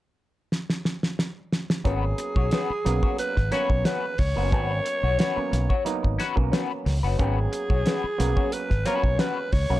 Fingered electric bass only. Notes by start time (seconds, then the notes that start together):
1.85 G#1
2.36 B1
2.70 muted fingered electric bass stroke
2.86 B1
3.37 G#1
3.70 B1
4.19 C#2
4.37 F#1
4.52 G#1
5.03 B1
5.37 muted fingered electric bass stroke
5.53 B1
6.04 G#1
6.37 B1
6.86 C#2
7.03 F#1
7.20 G#1
7.70 B1
8.04 muted fingered electric bass stroke
8.20 B1
8.71 G#1
9.04 B1
9.53 C#2
9.70 B1